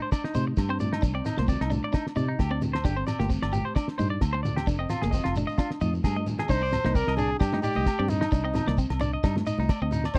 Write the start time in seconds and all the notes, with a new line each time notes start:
0.02 C5
0.12 D4 D5, kick, snare, low agogo, shekere
0.24 D#4, snare
0.35 C3 D#4 C5, high conga, shekere
0.47 muted clean electric guitar stroke
0.57 G2, kick, snare, low agogo, shekere
0.69 C4 C5
0.80 D5, high conga, low conga, shekere
0.93 D#4, snare, low agogo
1.02 C2 D4, kick, shekere
1.15 C4 D5
1.25 D#4, snare, low conga, low agogo, shekere
1.37 C2 A#3 C5, snare, high conga, shekere
1.48 C4 D5, kick, low conga, shekere
1.61 C2 D#4, snare, low agogo
1.70 D4, high conga, low conga, shekere
1.84 D5
1.93 D4 D#4, kick, snare, low agogo, shekere
2.07 snare
2.16 C3 D#4 D5, high conga, shekere
2.28 D#4
2.39 D2 G4, kick, snare, low agogo, shekere
2.51 C4 D5
2.62 high conga, low conga, shekere
2.73 C5, snare, low agogo
2.84 G1 D4 G4, kick, shekere
2.96 C4 C5
3.07 D5, snare, low conga, low agogo, shekere
3.19 G1 A#3 G4, snare, high conga, shekere
3.30 C4, kick, low conga, shekere
3.42 G1 D5, snare, low agogo
3.53 G4, high conga, low conga, shekere
3.65 C5
3.76 D4 D5, kick, snare, low agogo, shekere
3.88 snare
3.98 G2 D#4 C5, high conga, shekere
4.10 D5
4.21 D2, kick, snare, low agogo, shekere
4.33 C5, muted clean electric guitar stroke
4.43 D5, high conga, low conga, shekere
4.56 G4, snare, low agogo
4.67 F1 D4, kick, shekere
4.79 C4 D#5
4.90 F4, snare, low conga, low agogo, shekere
5.02 F1 A#3 G#4, snare, high conga, shekere
5.11 C4 D#5, kick, low conga, shekere
5.24 F1 F4, snare, low agogo
5.35 D4, high conga, low conga, shekere
5.47 D#5, shekere
5.58 D4 F4, kick, snare, low agogo, shekere
5.71 snare
5.81 F2 D#4 D#5, high conga, shekere
5.93 high conga, shekere
6.04 G2 G#4, kick, snare, high conga, low agogo, shekere
6.16 D#5, high conga
6.26 low conga, shekere
6.39 G#4, snare, low conga, low agogo
6.49 C2 D4 D#4 C5, kick, shekere
6.62 D5, muted clean electric guitar stroke
6.72 snare, low conga, low agogo, shekere
6.84 C2 A#3 D#4, snare
6.95 C4 A#4 D5, kick, shekere
7.07 C2 D#5, snare, low agogo
7.17 D4 G#4, low conga, shekere
7.40 G2 D4 G4, kick, snare, low agogo, shekere
7.52 D#4, snare, high conga
7.63 D#4 G4 D5, shekere
7.75 C2 D#5, high conga, shekere
7.86 kick, snare, low agogo, shekere
7.99 G2 C4 D5
8.08 D#4, low conga, shekere
8.21 D#4, snare, low agogo, shekere
8.32 C2 D4, kick, shekere
8.45 C4 D#5
8.54 D#4, snare, low conga, low agogo, shekere
8.67 C2 A#3 D5, snare
8.78 C4, kick, shekere
8.90 C2, snare, low agogo
9.00 D4 D5, low conga, shekere
9.13 D#5
9.24 G2 D4 D#4, kick, snare, low agogo, shekere
9.36 snare, high conga
9.46 D#4 D#5, shekere
9.58 C2 D#4, high conga, shekere
9.69 D5, kick, snare, low agogo, shekere
9.82 D2 C4 D#5
9.91 D#4, snare, low conga, shekere
10.04 D5, snare, low agogo, shekere
10.15 G1 D4 C5, kick